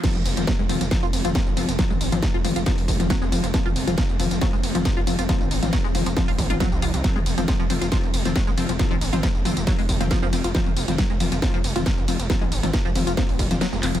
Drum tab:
CC |x---------------|----------------|----------------|----------------|
RD |--x---x---x---x-|--x---x---x---x-|--x---x---x---x-|--x---x---x---x-|
HH |x-oxx-oxx-oxx-ox|x-oxx-oxxooxx-ox|x-oxx-oxx-oxx-ox|x-oxx-oxxooxx-ox|
TB |xxxxxxxxxxxxxxxx|xxxxxxxxxxxxxxxx|xxxxxxxxxxxxxxxx|xxxxxxxxxxxxxxxx|
CP |----------------|----------------|----------------|----------------|
SD |o---o---o---o---|o---o---o---o---|o---o---o---o---|o---o---o---o---|
T2 |-o-o--o----o----|-o-o--o----o----|-o-o--o----o----|-o-o--o----o----|
BD |o---o---o---o---|o---o---o-o-o---|o---o---o---o---|o---o---o-o-o---|

CC |----------------|----------------|----------------|----------------|
RD |--x---x---x---x-|--x---x---x---x-|--x---x---x---x-|--x---x---x---x-|
HH |x-oxx-oxx-oxx-ox|x-oxx-oxxooxx-ox|x-oxx-oxx-oxx-ox|x-oxx-oxxooxx-ox|
TB |xxxxxxxxxxxxxxxx|xxxxxxxxxxxxxxxx|xxxxxxxxxxxxxxxx|xxxxxxxxxxxxxxxx|
CP |----------------|----------------|----------------|--------------x-|
SD |o---o---o---o---|o---o---o---o---|o---o---o---o---|o---o---o---o---|
T2 |-o-o--o----o----|-o-o--o----o----|-o-o--o----o----|-o-o--o----o----|
BD |o---o---o---o---|o---o---o-o-o---|o---o---o---o---|o---o---o-o-----|